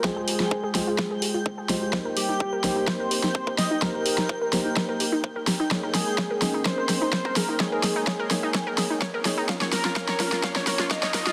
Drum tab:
HH |--o---o---o---o-|--o---o---o---o-|--o---o---o---o-|--o---o---o---o-|
SD |o--o--o-o-----o-|o-----o-o--o--o-|o--o--o-o-----o-|o-o-o-o-o-o-o-o-|
BD |o---o---o---o---|o---o---o---oo--|o---o---o---o---|o---o---o---oo--|

HH |--o---o---o---o-|--o---o---o---o-|
SD |o-o-o-o-o-o-o-o-|oooooooooooooooo|
BD |o---o---o---o---|o---o---o---oo--|